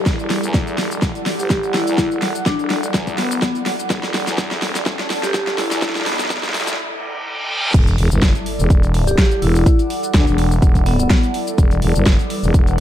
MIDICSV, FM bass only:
0, 0, Header, 1, 2, 480
1, 0, Start_track
1, 0, Key_signature, 1, "minor"
1, 0, Tempo, 480000
1, 62, Time_signature, 4, 2, 24, 8
1, 12801, End_track
2, 0, Start_track
2, 0, Title_t, "FM bass"
2, 0, Program_c, 0, 39
2, 61, Note_on_c, 0, 28, 93
2, 171, Note_off_c, 0, 28, 0
2, 192, Note_on_c, 0, 28, 97
2, 411, Note_off_c, 0, 28, 0
2, 432, Note_on_c, 0, 40, 99
2, 764, Note_off_c, 0, 40, 0
2, 781, Note_on_c, 0, 28, 95
2, 1131, Note_off_c, 0, 28, 0
2, 1392, Note_on_c, 0, 31, 100
2, 1851, Note_off_c, 0, 31, 0
2, 1872, Note_on_c, 0, 40, 95
2, 2091, Note_off_c, 0, 40, 0
2, 2112, Note_on_c, 0, 28, 94
2, 2331, Note_off_c, 0, 28, 0
2, 2592, Note_on_c, 0, 28, 100
2, 2924, Note_off_c, 0, 28, 0
2, 2942, Note_on_c, 0, 40, 93
2, 3164, Note_off_c, 0, 40, 0
2, 3181, Note_on_c, 0, 30, 96
2, 3404, Note_off_c, 0, 30, 0
2, 3902, Note_on_c, 0, 28, 97
2, 4011, Note_off_c, 0, 28, 0
2, 4031, Note_on_c, 0, 28, 95
2, 4251, Note_off_c, 0, 28, 0
2, 4272, Note_on_c, 0, 40, 97
2, 4604, Note_off_c, 0, 40, 0
2, 4621, Note_on_c, 0, 28, 96
2, 4971, Note_off_c, 0, 28, 0
2, 5232, Note_on_c, 0, 31, 99
2, 5691, Note_off_c, 0, 31, 0
2, 5712, Note_on_c, 0, 40, 99
2, 5931, Note_off_c, 0, 40, 0
2, 7742, Note_on_c, 0, 28, 96
2, 7964, Note_off_c, 0, 28, 0
2, 7982, Note_on_c, 0, 28, 95
2, 8092, Note_off_c, 0, 28, 0
2, 8112, Note_on_c, 0, 30, 95
2, 8331, Note_off_c, 0, 30, 0
2, 8592, Note_on_c, 0, 28, 98
2, 8684, Note_off_c, 0, 28, 0
2, 8702, Note_on_c, 0, 28, 93
2, 9164, Note_off_c, 0, 28, 0
2, 9421, Note_on_c, 0, 28, 98
2, 9644, Note_off_c, 0, 28, 0
2, 10142, Note_on_c, 0, 38, 97
2, 10252, Note_off_c, 0, 38, 0
2, 10272, Note_on_c, 0, 28, 96
2, 10604, Note_off_c, 0, 28, 0
2, 10622, Note_on_c, 0, 28, 96
2, 11084, Note_off_c, 0, 28, 0
2, 11582, Note_on_c, 0, 28, 98
2, 11804, Note_off_c, 0, 28, 0
2, 11822, Note_on_c, 0, 28, 98
2, 11931, Note_off_c, 0, 28, 0
2, 11952, Note_on_c, 0, 30, 98
2, 12171, Note_off_c, 0, 30, 0
2, 12432, Note_on_c, 0, 28, 101
2, 12524, Note_off_c, 0, 28, 0
2, 12542, Note_on_c, 0, 28, 98
2, 12801, Note_off_c, 0, 28, 0
2, 12801, End_track
0, 0, End_of_file